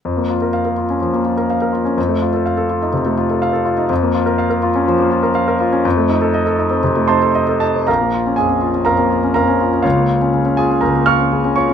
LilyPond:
\new Staff \with { instrumentName = "Grand piano" } { \time 4/4 \key bes \minor \tempo 4 = 123 << { r1 | r1 | r1 | r2 r8 <c'' a'' c'''>4 <a' a''>8 |
<bes' f'' bes''>4 <aes' aes''>4 <bes' f'' bes''>4 <bes' f'' bes''>4 | <f' des'' f''>4. <aes' aes''>8 <bes' bes''>8 <f'' des''' f'''>4 <des'' des'''>8 | } \\ { f,16 bes16 f'16 bes'16 f''16 bes'16 f'16 des'16 f16 bes16 f'16 bes'16 f''16 bes'16 f'16 des'16 | f,16 a16 f'16 a'16 f''16 a'16 f'16 ees'16 c16 a16 f'16 a'16 f''16 a'16 f'16 ees'16 | f,16 bes16 f'16 bes'16 f''16 bes'16 f'16 des'16 f16 bes16 f'16 bes'16 f''16 bes'16 f'16 des'16 | f,16 a16 ees'16 a'16 ees''16 a'16 ees'16 c'16 c16 a16 ees'16 a'16 ees''16 a'16 ees'16 c'16 |
bes,,16 bes16 f'16 des'16 f,16 des'16 f'16 des'16 f,16 bes16 f'16 des'16 f,16 des'16 f'16 des'16 | des,16 bes16 f'16 des'16 des16 des'16 f'16 des'16 des,16 bes16 f'16 des'16 des16 des'16 f'16 des'16 | } >> }